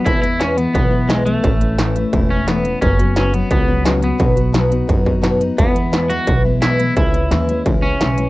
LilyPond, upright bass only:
\new Staff \with { instrumentName = "Upright bass" } { \clef bass \time 4/4 \key e \major \tempo 4 = 174 e,2 b,,2 | a,,2 e,,2 | fis,,2 cis,2 | b,,2 fis,2 |
e,2 b,,2 | cis,4 dis,4 cis,4 b,,4 | }